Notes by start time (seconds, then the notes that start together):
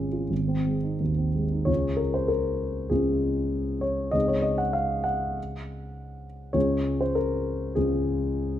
Already playing: G#1 G#2 G#3 C#4 F4 G#4
0.13 F4
0.30 G#1
0.48 C4
0.67 G#3
0.83 D#4
1.00 D#2
1.17 C4
1.35 G#3
1.51 D#4
1.65 C#2 G#3 C#4 F4 C#5
1.97 A#4
2.14 C5
2.28 A#4
2.90 C#2 G#3 C#4 F4 G#4
3.81 C#5
4.11 C#2 G#3 C4 D#4 D#5
4.28 C#5
4.42 D#5
4.58 F#5
4.73 F5
5.04 F#5
6.53 C#2 G#3 C#4 F4 C#5
7.01 C5
7.15 A#4
7.75 C#2 G#3 C#4 F4 G#4